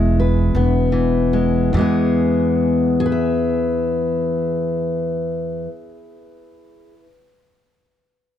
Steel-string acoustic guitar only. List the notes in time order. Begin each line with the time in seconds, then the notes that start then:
Already playing: E2 E3 G#3 E4
0.19 B4
0.56 B3
0.92 E3
1.33 G#3
1.73 E2 E3
1.77 G#3 B3 G#4
3.00 G#4
3.06 B4
3.12 E5